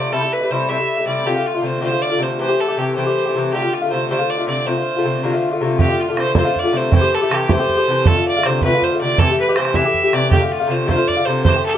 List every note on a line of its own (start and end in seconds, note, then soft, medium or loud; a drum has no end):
0.00 0.11 C3 medium
0.00 0.12 D3 medium
0.00 0.12 A3 medium
0.00 0.13 F4 medium
0.00 0.14 D5 medium
0.12 0.22 C3 medium
0.12 0.22 G3 medium
0.12 0.23 A3 medium
0.12 0.21 E4 medium
0.12 0.34 A4 loud
0.23 0.42 G3 soft
0.23 0.41 A3 soft
0.23 0.39 E4 soft
0.33 0.52 B4 loud
0.40 0.50 G3 soft
0.40 0.51 A3 soft
0.40 0.50 E4 soft
0.50 0.67 C3 medium
0.50 0.68 G3 medium
0.50 0.69 A3 medium
0.50 0.69 E4 medium
0.50 0.70 C5 medium
0.69 0.79 C3 medium
0.69 0.79 G3 medium
0.69 0.78 A3 medium
0.69 0.76 E4 medium
0.69 1.06 E5 loud
0.77 0.99 G3 soft
0.77 0.98 A3 soft
0.77 0.96 E4 medium
0.97 1.05 G3 soft
0.97 1.06 A3 soft
0.97 1.07 E4 soft
1.05 1.24 C3 soft
1.05 1.25 G3 medium
1.05 1.25 A3 medium
1.05 1.26 E4 medium
1.05 1.27 D5 medium
1.25 1.35 C3 medium
1.25 1.36 D3 medium
1.25 1.36 A3 medium
1.25 1.35 F4 medium
1.25 1.48 G4 medium
1.36 1.56 D3 soft
1.36 1.55 A3 soft
1.36 1.53 F4 soft
1.46 1.67 F4 medium
1.55 1.62 D3 soft
1.55 1.63 A3 soft
1.55 1.64 F4 medium
1.62 1.80 C3 medium
1.62 1.81 D3 medium
1.62 1.81 A3 medium
1.62 1.82 F4 medium
1.62 1.82 C5 medium
1.81 1.92 C3 medium
1.81 1.92 D3 medium
1.81 1.91 A3 medium
1.81 1.90 F4 medium
1.81 2.04 C5 loud
1.91 2.12 D3 soft
1.91 2.10 A3 soft
1.91 2.09 F4 soft
2.02 2.24 D5 loud
2.10 2.18 D3 soft
2.10 2.19 A3 soft
2.10 2.20 F4 soft
2.18 2.37 C3 medium
2.18 2.38 D3 medium
2.18 2.39 A3 medium
2.18 2.39 F4 medium
2.22 2.39 C5 medium
2.39 2.49 C3 medium
2.39 2.49 E3 medium
2.39 2.50 A3 medium
2.39 2.47 G4 medium
2.39 2.62 C5 loud
2.48 2.69 E3 soft
2.48 2.68 A3 soft
2.48 2.67 G4 soft
2.60 2.80 A4 medium
2.68 2.77 E3 soft
2.68 2.78 A3 medium
2.68 2.77 G4 medium
2.77 2.96 C3 medium
2.77 2.96 E3 medium
2.77 2.97 A3 medium
2.77 2.95 G4 medium
2.77 2.97 G4 medium
2.95 3.06 C3 medium
2.95 3.07 E3 medium
2.95 3.06 A3 medium
2.95 3.05 G4 medium
2.95 3.48 C5 medium
3.06 3.26 E3 soft
3.06 3.26 A3 medium
3.06 3.25 G4 soft
3.26 3.35 E3 soft
3.26 3.36 A3 soft
3.26 3.35 G4 soft
3.35 3.51 C3 medium
3.35 3.53 E3 medium
3.35 3.53 A3 medium
3.35 3.54 G4 medium
3.52 3.63 C3 medium
3.52 3.63 D3 medium
3.52 3.63 A3 medium
3.52 3.61 F4 medium
3.52 3.75 G4 medium
3.62 3.83 D3 soft
3.62 3.82 A3 soft
3.62 3.81 F4 soft
3.73 3.90 F4 medium
3.82 3.91 D3 soft
3.82 3.92 A3 soft
3.82 3.91 F4 medium
3.90 4.09 C3 medium
3.90 4.10 D3 medium
3.90 4.11 A3 medium
3.90 4.11 F4 medium
3.90 4.08 C5 medium
4.09 4.20 C3 medium
4.09 4.20 D3 medium
4.09 4.19 A3 medium
4.09 4.17 F4 medium
4.09 4.31 C5 medium
4.18 4.39 D3 soft
4.18 4.39 A3 soft
4.18 4.37 F4 medium
4.30 4.47 D5 medium
4.38 4.47 D3 soft
4.38 4.48 A3 soft
4.38 4.47 F4 medium
4.47 4.65 C3 medium
4.47 4.66 D3 medium
4.47 4.66 A3 medium
4.47 4.67 F4 medium
4.47 4.67 D5 medium
4.66 4.76 C3 medium
4.66 4.77 D3 medium
4.66 4.77 A3 medium
4.66 4.76 F4 medium
4.66 5.43 C5 loud
4.77 4.97 D3 soft
4.77 4.97 A3 soft
4.77 4.95 F4 soft
4.96 5.04 D3 soft
4.96 5.06 A3 medium
4.96 5.05 F4 soft
5.04 5.22 C3 medium
5.04 5.23 D3 medium
5.04 5.23 A3 medium
5.04 5.24 F4 medium
5.23 5.33 C3 medium
5.23 5.33 D3 medium
5.23 5.32 A3 medium
5.23 5.30 F4 medium
5.32 5.53 D3 soft
5.32 5.51 A3 medium
5.32 5.50 F4 soft
5.51 5.60 D3 soft
5.51 5.61 A3 medium
5.51 5.61 F4 medium
5.61 5.78 C3 medium
5.61 5.78 D3 medium
5.61 5.79 A3 medium
5.61 5.80 F4 medium
5.79 5.89 C3 medium
5.79 5.89 D3 medium
5.79 5.89 A3 medium
5.79 5.87 F4 medium
5.79 6.01 G4 medium
5.79 bodhran medium
5.88 6.09 D3 soft
5.88 6.08 A3 soft
5.88 6.07 F4 soft
6.00 6.18 F4 medium
6.08 6.16 D3 soft
6.08 6.17 A3 soft
6.08 6.18 F4 medium
6.15 6.34 C3 medium
6.15 6.34 D3 medium
6.15 6.35 A3 medium
6.15 6.36 F4 medium
6.15 6.35 C5 medium
6.15 bodhran medium
6.35 6.45 C3 medium
6.35 6.46 D3 medium
6.35 6.46 A3 medium
6.35 6.43 F4 medium
6.35 6.60 C5 medium
6.35 bodhran loud
6.45 6.65 D3 soft
6.45 6.64 A3 soft
6.45 6.62 F4 medium
6.56 6.78 D5 medium
6.56 bodhran soft
6.64 6.72 D3 soft
6.64 6.73 A3 soft
6.64 6.74 F4 medium
6.72 6.90 C3 medium
6.72 6.92 D3 medium
6.72 6.92 A3 medium
6.72 6.93 F4 medium
6.77 6.94 C5 medium
6.92 7.02 C3 medium
6.92 7.03 E3 medium
6.92 7.01 A3 medium
6.92 7.00 G4 medium
6.92 7.16 C5 loud
6.92 bodhran medium
7.01 7.23 E3 soft
7.01 7.22 A3 soft
7.01 7.20 G4 soft
7.15 7.35 A4 loud
7.21 7.30 E3 soft
7.21 7.31 A3 medium
7.21 7.30 G4 soft
7.29 7.46 C3 medium
7.29 7.47 E3 medium
7.29 7.48 A3 medium
7.29 7.48 G4 medium
7.29 bodhran medium
7.33 7.52 G4 medium
7.47 7.58 C3 medium
7.47 7.58 E3 medium
7.47 7.59 A3 medium
7.47 7.58 G4 medium
7.47 8.08 C5 loud
7.47 bodhran medium
7.59 7.78 E3 soft
7.59 7.77 A3 soft
7.59 7.75 G4 medium
7.69 bodhran soft
7.77 7.88 E3 soft
7.77 7.87 A3 soft
7.77 7.87 G4 soft
7.87 8.06 C3 medium
7.87 8.06 E3 medium
7.87 8.07 A3 medium
7.87 8.07 G4 medium
8.06 8.16 C3 medium
8.06 8.16 D3 medium
8.06 8.16 A3 medium
8.06 8.15 F4 medium
8.06 8.26 A4 loud
8.06 bodhran medium
8.16 8.36 D3 soft
8.16 8.36 A3 soft
8.16 8.35 F4 soft
8.28 8.47 D5 medium
8.36 8.45 D3 soft
8.36 8.46 A3 medium
8.36 8.45 F4 medium
8.43 8.63 C3 medium
8.43 8.63 D3 medium
8.43 8.63 C5 loud
8.43 bodhran medium
8.47 8.64 A3 medium
8.47 8.64 F4 medium
8.62 8.73 C3 medium
8.62 8.85 B4 loud
8.62 bodhran medium
8.66 8.74 D3 medium
8.66 8.74 A3 medium
8.66 8.73 F4 medium
8.74 8.94 D3 soft
8.74 8.93 A3 soft
8.74 8.91 F4 medium
8.82 9.00 C5 medium
8.82 bodhran soft
8.92 9.01 D3 soft
8.92 9.02 A3 soft
8.92 9.01 F4 soft
9.01 9.19 C3 medium
9.01 9.20 D3 medium
9.01 9.20 A3 medium
9.01 9.21 F4 medium
9.01 9.20 D5 loud
9.18 9.29 C3 medium
9.18 9.29 E3 medium
9.18 9.30 A3 medium
9.18 9.30 G4 medium
9.18 9.39 A4 loud
9.18 bodhran medium
9.31 9.50 E3 soft
9.31 9.49 A3 soft
9.31 9.47 G4 medium
9.40 9.59 B4 medium
9.49 9.56 E3 soft
9.49 9.57 A3 soft
9.49 9.57 G4 medium
9.56 9.73 C3 medium
9.56 9.74 E3 medium
9.56 9.75 A3 medium
9.56 9.76 G4 medium
9.56 9.77 C5 loud
9.56 bodhran medium
9.65 bodhran soft
9.74 9.85 C3 medium
9.74 9.85 E3 medium
9.74 9.86 A3 medium
9.74 9.84 G4 medium
9.74 10.15 E5 medium
9.74 bodhran medium
9.85 10.06 E3 soft
9.85 10.04 A3 soft
9.85 10.03 G4 medium
9.94 bodhran soft
10.04 10.13 E3 soft
10.04 10.14 A3 soft
10.04 10.13 G4 soft
10.13 10.30 C3 medium
10.13 10.32 E3 medium
10.13 10.32 A3 medium
10.13 10.33 G4 medium
10.13 10.30 D5 medium
10.13 bodhran soft
10.30 10.42 C3 medium
10.30 10.42 D3 medium
10.30 10.41 A3 medium
10.30 10.40 F4 medium
10.30 10.46 G4 medium
10.30 bodhran medium
10.41 10.62 D3 soft
10.41 10.60 A3 soft
10.41 10.59 F4 soft
10.46 10.53 G4 medium
10.52 10.73 F4 medium
10.60 10.67 D3 soft
10.60 10.68 A3 medium
10.60 10.69 F4 medium
10.68 10.85 C3 medium
10.68 10.86 D3 medium
10.68 10.87 A3 medium
10.68 10.87 F4 medium
10.68 10.88 C5 medium
10.86 10.97 C3 medium
10.86 10.98 D3 medium
10.86 10.96 A3 medium
10.86 10.95 F4 medium
10.86 11.09 C5 loud
10.86 bodhran medium
10.96 11.18 D3 soft
10.96 11.17 A3 soft
10.96 11.15 F4 soft
11.08 11.27 D5 loud
11.08 bodhran soft
11.17 11.28 D3 soft
11.17 11.27 A3 soft
11.17 11.26 F4 soft
11.25 11.43 C3 medium
11.25 11.46 D3 medium
11.25 11.43 C5 medium
11.29 11.45 A3 medium
11.29 11.47 F4 medium
11.44 11.55 C3 medium
11.44 11.55 E3 medium
11.44 11.56 A3 medium
11.44 11.55 G4 medium
11.44 11.63 C5 loud
11.44 bodhran medium
11.56 11.76 E3 soft
11.56 11.75 A3 soft
11.56 11.73 G4 soft
11.66 11.78 A4 medium
11.74 11.78 G4 medium